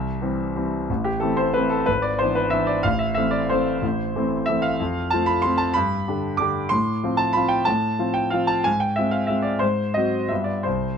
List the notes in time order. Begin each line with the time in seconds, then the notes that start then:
Already playing: C2 E5
0.21 E3 G3 C4
0.55 E3 G3 C4
0.90 A1
1.04 G4
1.20 E3 A3 C4 A4
1.37 C5
1.54 E3 A3 C4 B4
1.70 A4
1.86 G#1 B4
2.02 D5
2.19 E3 B3 D4 C5
2.35 B4
2.50 E3 B3 D4 E5
2.67 D5
2.83 A1 F5
2.99 E5
3.15 E3 A3 C4 E5
3.31 D5
3.50 E3 A3 C4 C5
3.82 A1
4.16 E3 A3 C4
4.46 E3 A3 C4 E5
4.62 F5
4.80 F2
5.10 F3 A3 C4 A5
5.26 B5
5.42 F3 A3 C4 C6
5.58 A5
5.74 G2 B5
6.08 D3 D4 G4
6.37 D3 D4 G4 D6
6.69 A2 C6
7.03 F3 C4 F4
7.17 A5
7.33 F3 C4 F4 B5
7.49 G5
7.65 A2 A5
7.99 F3 C4 F4
8.14 G5
8.30 F3 C4 F4 F5
8.47 A5
8.64 G#2 G#5
8.80 G5
8.96 G#3 C4 F4 E5
9.11 F5
9.27 G#3 C4 F4 E5
9.42 D5
9.59 G#2 C5
9.94 F#3 C4 F#4 D#5
10.28 G2 G3 B3 F4 E5
10.44 D5
10.63 C2 C5